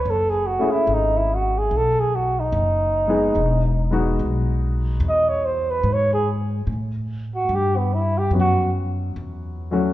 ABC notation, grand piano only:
X:1
M:4/4
L:1/8
Q:"Swing" 1/4=72
K:E
V:1 name="Grand piano"
z [A,CEG] z4 z [G,B,DG] | z [G,B,DF]3 z4 | z4 [F,B,CF] z2 [F,A,CF] |]